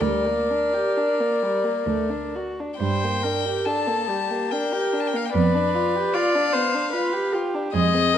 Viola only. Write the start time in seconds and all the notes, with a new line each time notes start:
0.01 A#4
2.79 C5
3.23 A#4
3.67 A4
4.09 G4
4.51 A#4
5.34 B4
6.14 D5
6.53 C5
6.93 B4
7.32 G4
7.73 G#4
8.14 A#4